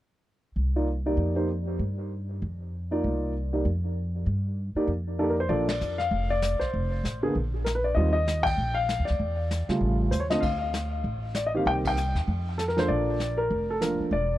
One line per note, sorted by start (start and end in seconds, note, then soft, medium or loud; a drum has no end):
0.56 1.15 C2 medium
0.76 0.87 A#3 soft
0.76 0.87 D#4 soft
0.76 0.87 F4 soft
0.76 0.87 D5 medium
1.06 1.34 A#3 soft
1.06 1.34 D#4 soft
1.06 1.34 G4 soft
1.06 1.36 D5 medium
1.17 1.76 F2 medium
1.35 1.47 A#3 soft
1.35 1.47 D#4 soft
1.35 1.48 G4 soft
1.35 1.48 C5 medium
1.79 2.38 G2 medium
2.42 3.01 F2 medium
2.91 3.32 A#3 medium
2.91 3.32 D#4 soft
2.91 3.32 F4 soft
2.91 3.32 D5 medium
3.04 3.63 C2 medium
3.53 3.64 A#3 soft
3.53 3.64 D#4 soft
3.53 3.64 G4 soft
3.53 3.64 D5 soft
3.65 4.24 F2 medium
4.26 4.73 G2 medium
4.75 4.87 A#3 medium
4.75 4.87 D#4 soft
4.75 4.88 G4 medium
4.75 4.87 D5 medium
4.75 muted upright bass stroke soft
4.87 5.47 F2 medium
5.19 5.36 A#3 medium
5.19 5.36 D#4 soft
5.19 5.36 G4 medium
5.19 5.24 A4 medium
5.19 5.36 D5 medium
5.30 5.34 A#4 medium
5.40 5.51 C5 medium
5.49 5.78 A#1 medium
5.49 5.67 F3 medium
5.49 5.67 A#3 soft
5.49 5.67 D4 soft
5.49 5.67 A4 medium
5.49 5.67 D5 medium
5.49 brush sweep soft
5.69 6.01 D5 medium
5.69 snare medium
5.69 ride medium
5.81 6.10 F2 medium
5.81 hi-hat pedal soft
5.98 6.31 F5 medium
5.98 snare soft
6.11 6.58 F1 medium
6.11 brush sweep soft
6.30 6.62 D5 medium
6.42 snare medium
6.42 hi-hat pedal medium
6.60 7.18 C5 medium
6.60 muted upright bass stroke soft
6.60 kick soft
6.60 snare soft
6.74 7.02 F1 medium
6.74 brush sweep soft
7.04 7.33 A1 medium
7.04 snare soft
7.04 hi-hat pedal soft
7.23 7.34 D3 medium
7.23 7.34 A#3 medium
7.23 7.34 B3 medium
7.23 7.34 G#4 medium
7.35 7.94 A#1 medium
7.35 brush sweep soft
7.64 7.69 A#4 medium
7.64 snare soft
7.64 hi-hat pedal medium
7.75 7.86 B4 medium
7.84 7.96 D5 medium
7.95 8.55 D#2 medium
7.95 8.13 D#3 soft
7.95 8.14 G3 soft
7.95 8.14 C4 soft
7.95 8.14 F4 medium
7.95 8.11 D#5 medium
7.95 brush sweep soft
8.13 8.46 D#5 medium
8.28 snare soft
8.28 hi-hat pedal medium
8.43 8.76 G5 loud
8.43 kick medium
8.43 ride medium
8.57 8.96 A#1 medium
8.57 brush sweep soft
8.75 9.04 F5 loud
8.89 snare medium
8.89 hi-hat pedal soft
8.99 9.09 D#2 soft
9.05 9.64 D5 medium
9.05 snare soft
9.10 9.19 D2 medium
9.19 9.66 E2 medium
9.19 brush sweep soft
9.51 snare soft
9.51 hi-hat pedal soft
9.68 10.10 C#3 soft
9.68 10.10 G3 soft
9.68 10.10 A3 soft
9.68 10.10 F4 medium
9.68 muted upright bass stroke soft
9.68 snare soft
9.81 10.10 A1 medium
9.81 brush sweep soft
10.11 10.41 D#2 medium
10.11 10.21 C5 medium
10.11 hi-hat pedal soft
10.20 10.25 C#5 medium
10.30 10.41 D3 medium
10.30 10.41 A3 medium
10.30 10.41 C4 medium
10.30 10.41 F4 medium
10.30 10.41 D#5 medium
10.30 snare soft
10.40 11.01 D2 medium
10.40 10.57 F5 medium
10.40 brush sweep soft
10.40 kick medium
10.40 ride medium
10.58 10.89 F5 medium
10.74 snare soft
10.74 hi-hat pedal medium
11.04 11.63 A1 medium
11.04 brush sweep soft
11.35 11.46 D5 medium
11.35 snare medium
11.35 hi-hat pedal medium
11.46 11.51 D#5 medium
11.54 11.95 D#3 medium
11.54 11.95 A#3 soft
11.54 11.95 C4 soft
11.54 11.95 G4 medium
11.54 11.61 F5 medium
11.66 12.12 C2 medium
11.66 11.72 G5 medium
11.66 brush sweep soft
11.85 12.15 G5 medium
11.85 kick medium
11.85 ride medium
11.97 hi-hat pedal medium
12.15 12.26 D#2 medium
12.15 snare soft
12.28 12.86 F2 medium
12.28 brush sweep soft
12.58 12.63 A4 medium
12.58 snare soft
12.58 hi-hat pedal medium
12.68 12.78 A#4 medium
12.68 snare soft
12.77 13.17 F3 medium
12.77 13.18 A#3 medium
12.77 13.17 D4 soft
12.77 13.18 A4 medium
12.77 12.88 C5 medium
12.77 snare soft
12.88 13.47 A#1 medium
12.88 13.40 D5 medium
12.88 brush sweep soft
13.20 snare soft
13.20 hi-hat pedal soft
13.38 13.70 A#4 medium
13.51 13.97 F1 medium
13.51 brush sweep soft
13.70 13.81 A4 medium
13.81 14.12 F3 soft
13.81 14.12 A#3 soft
13.81 14.12 D4 soft
13.81 14.13 A#4 medium
13.81 snare soft
13.81 hi-hat pedal medium
14.00 muted upright bass stroke soft
14.11 14.38 E1 medium
14.11 14.38 D5 medium
14.11 brush sweep soft